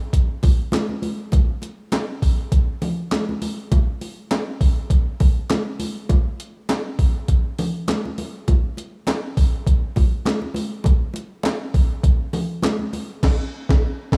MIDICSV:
0, 0, Header, 1, 2, 480
1, 0, Start_track
1, 0, Tempo, 595238
1, 1073, Time_signature, 4, 2, 24, 8
1, 11427, End_track
2, 0, Start_track
2, 0, Title_t, "Drums"
2, 106, Note_on_c, 9, 36, 80
2, 109, Note_on_c, 9, 42, 89
2, 187, Note_off_c, 9, 36, 0
2, 190, Note_off_c, 9, 42, 0
2, 345, Note_on_c, 9, 62, 53
2, 350, Note_on_c, 9, 46, 70
2, 351, Note_on_c, 9, 36, 97
2, 426, Note_off_c, 9, 62, 0
2, 431, Note_off_c, 9, 46, 0
2, 432, Note_off_c, 9, 36, 0
2, 580, Note_on_c, 9, 63, 94
2, 589, Note_on_c, 9, 42, 79
2, 597, Note_on_c, 9, 38, 108
2, 597, Note_on_c, 9, 39, 92
2, 661, Note_off_c, 9, 63, 0
2, 670, Note_off_c, 9, 42, 0
2, 678, Note_off_c, 9, 38, 0
2, 678, Note_off_c, 9, 39, 0
2, 717, Note_on_c, 9, 63, 54
2, 798, Note_off_c, 9, 63, 0
2, 824, Note_on_c, 9, 63, 65
2, 829, Note_on_c, 9, 46, 68
2, 905, Note_off_c, 9, 63, 0
2, 909, Note_off_c, 9, 46, 0
2, 1064, Note_on_c, 9, 62, 66
2, 1072, Note_on_c, 9, 36, 111
2, 1074, Note_on_c, 9, 42, 83
2, 1145, Note_off_c, 9, 62, 0
2, 1153, Note_off_c, 9, 36, 0
2, 1154, Note_off_c, 9, 42, 0
2, 1305, Note_on_c, 9, 62, 35
2, 1313, Note_on_c, 9, 42, 69
2, 1385, Note_off_c, 9, 62, 0
2, 1393, Note_off_c, 9, 42, 0
2, 1548, Note_on_c, 9, 63, 85
2, 1550, Note_on_c, 9, 42, 92
2, 1557, Note_on_c, 9, 38, 115
2, 1557, Note_on_c, 9, 39, 97
2, 1628, Note_off_c, 9, 63, 0
2, 1631, Note_off_c, 9, 42, 0
2, 1638, Note_off_c, 9, 38, 0
2, 1638, Note_off_c, 9, 39, 0
2, 1793, Note_on_c, 9, 36, 82
2, 1794, Note_on_c, 9, 46, 67
2, 1873, Note_off_c, 9, 36, 0
2, 1875, Note_off_c, 9, 46, 0
2, 2031, Note_on_c, 9, 36, 88
2, 2032, Note_on_c, 9, 42, 85
2, 2111, Note_off_c, 9, 36, 0
2, 2112, Note_off_c, 9, 42, 0
2, 2272, Note_on_c, 9, 62, 51
2, 2272, Note_on_c, 9, 64, 67
2, 2274, Note_on_c, 9, 46, 73
2, 2353, Note_off_c, 9, 62, 0
2, 2353, Note_off_c, 9, 64, 0
2, 2354, Note_off_c, 9, 46, 0
2, 2510, Note_on_c, 9, 42, 89
2, 2512, Note_on_c, 9, 63, 82
2, 2518, Note_on_c, 9, 38, 107
2, 2518, Note_on_c, 9, 39, 88
2, 2590, Note_off_c, 9, 42, 0
2, 2592, Note_off_c, 9, 63, 0
2, 2598, Note_off_c, 9, 38, 0
2, 2598, Note_off_c, 9, 39, 0
2, 2652, Note_on_c, 9, 63, 57
2, 2733, Note_off_c, 9, 63, 0
2, 2755, Note_on_c, 9, 63, 63
2, 2756, Note_on_c, 9, 46, 77
2, 2836, Note_off_c, 9, 63, 0
2, 2837, Note_off_c, 9, 46, 0
2, 2997, Note_on_c, 9, 36, 104
2, 2997, Note_on_c, 9, 42, 78
2, 2999, Note_on_c, 9, 62, 70
2, 3077, Note_off_c, 9, 36, 0
2, 3078, Note_off_c, 9, 42, 0
2, 3080, Note_off_c, 9, 62, 0
2, 3236, Note_on_c, 9, 62, 33
2, 3237, Note_on_c, 9, 46, 75
2, 3317, Note_off_c, 9, 46, 0
2, 3317, Note_off_c, 9, 62, 0
2, 3474, Note_on_c, 9, 42, 93
2, 3476, Note_on_c, 9, 63, 75
2, 3481, Note_on_c, 9, 38, 119
2, 3481, Note_on_c, 9, 39, 89
2, 3555, Note_off_c, 9, 42, 0
2, 3556, Note_off_c, 9, 63, 0
2, 3562, Note_off_c, 9, 38, 0
2, 3562, Note_off_c, 9, 39, 0
2, 3715, Note_on_c, 9, 36, 97
2, 3717, Note_on_c, 9, 46, 63
2, 3796, Note_off_c, 9, 36, 0
2, 3797, Note_off_c, 9, 46, 0
2, 3952, Note_on_c, 9, 36, 86
2, 3956, Note_on_c, 9, 42, 91
2, 4033, Note_off_c, 9, 36, 0
2, 4037, Note_off_c, 9, 42, 0
2, 4194, Note_on_c, 9, 62, 45
2, 4195, Note_on_c, 9, 46, 71
2, 4197, Note_on_c, 9, 36, 96
2, 4275, Note_off_c, 9, 46, 0
2, 4275, Note_off_c, 9, 62, 0
2, 4278, Note_off_c, 9, 36, 0
2, 4432, Note_on_c, 9, 42, 78
2, 4436, Note_on_c, 9, 63, 87
2, 4439, Note_on_c, 9, 38, 108
2, 4439, Note_on_c, 9, 39, 79
2, 4512, Note_off_c, 9, 42, 0
2, 4516, Note_off_c, 9, 63, 0
2, 4520, Note_off_c, 9, 38, 0
2, 4520, Note_off_c, 9, 39, 0
2, 4673, Note_on_c, 9, 63, 66
2, 4674, Note_on_c, 9, 46, 79
2, 4753, Note_off_c, 9, 63, 0
2, 4755, Note_off_c, 9, 46, 0
2, 4914, Note_on_c, 9, 62, 74
2, 4916, Note_on_c, 9, 36, 104
2, 4918, Note_on_c, 9, 42, 90
2, 4994, Note_off_c, 9, 62, 0
2, 4997, Note_off_c, 9, 36, 0
2, 4998, Note_off_c, 9, 42, 0
2, 5160, Note_on_c, 9, 42, 73
2, 5240, Note_off_c, 9, 42, 0
2, 5394, Note_on_c, 9, 63, 85
2, 5396, Note_on_c, 9, 42, 93
2, 5403, Note_on_c, 9, 38, 122
2, 5403, Note_on_c, 9, 39, 94
2, 5475, Note_off_c, 9, 63, 0
2, 5477, Note_off_c, 9, 42, 0
2, 5484, Note_off_c, 9, 38, 0
2, 5484, Note_off_c, 9, 39, 0
2, 5635, Note_on_c, 9, 36, 84
2, 5636, Note_on_c, 9, 46, 76
2, 5716, Note_off_c, 9, 36, 0
2, 5717, Note_off_c, 9, 46, 0
2, 5874, Note_on_c, 9, 36, 83
2, 5874, Note_on_c, 9, 42, 97
2, 5954, Note_off_c, 9, 42, 0
2, 5955, Note_off_c, 9, 36, 0
2, 6116, Note_on_c, 9, 46, 68
2, 6119, Note_on_c, 9, 62, 45
2, 6119, Note_on_c, 9, 64, 67
2, 6197, Note_off_c, 9, 46, 0
2, 6200, Note_off_c, 9, 62, 0
2, 6200, Note_off_c, 9, 64, 0
2, 6352, Note_on_c, 9, 63, 89
2, 6355, Note_on_c, 9, 42, 91
2, 6362, Note_on_c, 9, 38, 97
2, 6362, Note_on_c, 9, 39, 90
2, 6433, Note_off_c, 9, 63, 0
2, 6435, Note_off_c, 9, 42, 0
2, 6443, Note_off_c, 9, 38, 0
2, 6443, Note_off_c, 9, 39, 0
2, 6495, Note_on_c, 9, 63, 57
2, 6576, Note_off_c, 9, 63, 0
2, 6596, Note_on_c, 9, 46, 81
2, 6596, Note_on_c, 9, 63, 64
2, 6677, Note_off_c, 9, 46, 0
2, 6677, Note_off_c, 9, 63, 0
2, 6837, Note_on_c, 9, 62, 67
2, 6838, Note_on_c, 9, 36, 98
2, 6839, Note_on_c, 9, 42, 85
2, 6917, Note_off_c, 9, 62, 0
2, 6919, Note_off_c, 9, 36, 0
2, 6919, Note_off_c, 9, 42, 0
2, 7074, Note_on_c, 9, 62, 34
2, 7082, Note_on_c, 9, 42, 72
2, 7155, Note_off_c, 9, 62, 0
2, 7162, Note_off_c, 9, 42, 0
2, 7312, Note_on_c, 9, 63, 76
2, 7316, Note_on_c, 9, 42, 91
2, 7323, Note_on_c, 9, 38, 108
2, 7323, Note_on_c, 9, 39, 102
2, 7392, Note_off_c, 9, 63, 0
2, 7397, Note_off_c, 9, 42, 0
2, 7404, Note_off_c, 9, 38, 0
2, 7404, Note_off_c, 9, 39, 0
2, 7557, Note_on_c, 9, 36, 88
2, 7558, Note_on_c, 9, 46, 68
2, 7637, Note_off_c, 9, 36, 0
2, 7639, Note_off_c, 9, 46, 0
2, 7795, Note_on_c, 9, 36, 86
2, 7800, Note_on_c, 9, 42, 94
2, 7875, Note_off_c, 9, 36, 0
2, 7880, Note_off_c, 9, 42, 0
2, 8032, Note_on_c, 9, 62, 51
2, 8039, Note_on_c, 9, 36, 84
2, 8039, Note_on_c, 9, 46, 64
2, 8113, Note_off_c, 9, 62, 0
2, 8119, Note_off_c, 9, 36, 0
2, 8119, Note_off_c, 9, 46, 0
2, 8269, Note_on_c, 9, 63, 88
2, 8275, Note_on_c, 9, 42, 87
2, 8283, Note_on_c, 9, 38, 114
2, 8283, Note_on_c, 9, 39, 85
2, 8350, Note_off_c, 9, 63, 0
2, 8356, Note_off_c, 9, 42, 0
2, 8363, Note_off_c, 9, 38, 0
2, 8363, Note_off_c, 9, 39, 0
2, 8400, Note_on_c, 9, 63, 60
2, 8481, Note_off_c, 9, 63, 0
2, 8502, Note_on_c, 9, 63, 71
2, 8516, Note_on_c, 9, 46, 75
2, 8583, Note_off_c, 9, 63, 0
2, 8596, Note_off_c, 9, 46, 0
2, 8741, Note_on_c, 9, 62, 65
2, 8754, Note_on_c, 9, 36, 108
2, 8757, Note_on_c, 9, 42, 90
2, 8822, Note_off_c, 9, 62, 0
2, 8835, Note_off_c, 9, 36, 0
2, 8838, Note_off_c, 9, 42, 0
2, 8980, Note_on_c, 9, 62, 38
2, 8998, Note_on_c, 9, 42, 78
2, 9061, Note_off_c, 9, 62, 0
2, 9078, Note_off_c, 9, 42, 0
2, 9220, Note_on_c, 9, 63, 89
2, 9234, Note_on_c, 9, 42, 90
2, 9242, Note_on_c, 9, 38, 115
2, 9242, Note_on_c, 9, 39, 96
2, 9301, Note_off_c, 9, 63, 0
2, 9315, Note_off_c, 9, 42, 0
2, 9322, Note_off_c, 9, 38, 0
2, 9322, Note_off_c, 9, 39, 0
2, 9469, Note_on_c, 9, 36, 95
2, 9471, Note_on_c, 9, 46, 70
2, 9549, Note_off_c, 9, 36, 0
2, 9552, Note_off_c, 9, 46, 0
2, 9705, Note_on_c, 9, 36, 97
2, 9708, Note_on_c, 9, 42, 95
2, 9786, Note_off_c, 9, 36, 0
2, 9789, Note_off_c, 9, 42, 0
2, 9944, Note_on_c, 9, 62, 50
2, 9944, Note_on_c, 9, 64, 70
2, 9948, Note_on_c, 9, 46, 59
2, 10025, Note_off_c, 9, 62, 0
2, 10025, Note_off_c, 9, 64, 0
2, 10029, Note_off_c, 9, 46, 0
2, 10180, Note_on_c, 9, 63, 92
2, 10188, Note_on_c, 9, 42, 92
2, 10196, Note_on_c, 9, 38, 107
2, 10196, Note_on_c, 9, 39, 94
2, 10261, Note_off_c, 9, 63, 0
2, 10269, Note_off_c, 9, 42, 0
2, 10276, Note_off_c, 9, 38, 0
2, 10276, Note_off_c, 9, 39, 0
2, 10313, Note_on_c, 9, 63, 55
2, 10394, Note_off_c, 9, 63, 0
2, 10426, Note_on_c, 9, 63, 66
2, 10430, Note_on_c, 9, 46, 75
2, 10507, Note_off_c, 9, 63, 0
2, 10511, Note_off_c, 9, 46, 0
2, 10668, Note_on_c, 9, 36, 101
2, 10669, Note_on_c, 9, 49, 76
2, 10676, Note_on_c, 9, 38, 108
2, 10749, Note_off_c, 9, 36, 0
2, 10750, Note_off_c, 9, 49, 0
2, 10757, Note_off_c, 9, 38, 0
2, 11042, Note_on_c, 9, 36, 120
2, 11052, Note_on_c, 9, 38, 113
2, 11123, Note_off_c, 9, 36, 0
2, 11133, Note_off_c, 9, 38, 0
2, 11388, Note_on_c, 9, 36, 106
2, 11394, Note_on_c, 9, 38, 106
2, 11427, Note_off_c, 9, 36, 0
2, 11427, Note_off_c, 9, 38, 0
2, 11427, End_track
0, 0, End_of_file